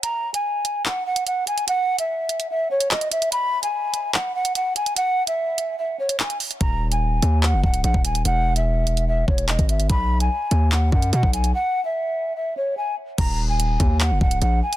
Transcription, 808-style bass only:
X:1
M:4/4
L:1/16
Q:1/4=146
K:Ebphr
V:1 name="808-style bass" clef=bass
z16 | z16 | z16 | z16 |
E,,,6 E,,3 G,,, D,,,2 B,,, z3 | =E,,,8- E,,,2 E,,,3 ^G,,,3 | =B,,,4 z2 ^D,,4 ^F,,2 =B,, B,,,3 | z16 |
E,,,6 E,,3 G,,, D,,,2 B,,,2 z2 |]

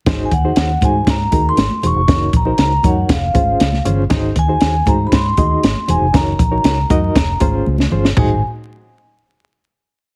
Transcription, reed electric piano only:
X:1
M:4/4
L:1/16
Q:1/4=118
K:Abmix
V:1 name="Reed electric piano"
[EGAc]2 z [EGAc]2 z [EGAc]3 z [EGAB]3 z [EGAc] z | [EGBd]2 z [EGBc]2 z [EGBd]2 z2 [DFAc]3 z [DFAc] z | [EGAc]2 z [EGAc]2 z [EGAc]3 z [EGAe]3 z [EGAc] z | [EGBd]2 z [EGBd]2 z [EGBe]2 z2 [DFAc]3 z [DFAc] z |
[EGAc]2 z12 z2 |]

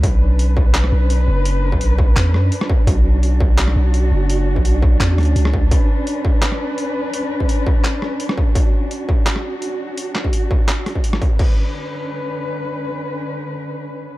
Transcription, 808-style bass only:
X:1
M:4/4
L:1/16
Q:1/4=169
K:Bm
V:1 name="808-style bass" clef=bass
B,,,8- B,,,2 B,,,4 F,,,2- | F,,,3 B,,,4- B,,, E,,2 F,,2 z4 | B,,,8- B,,,2 B,,,4 F,,,2- | F,,,3 B,,,4- B,,, E,,2 D,,2 C,,4 |
z16 | z16 | z16 | z16 |
z16 | z16 |]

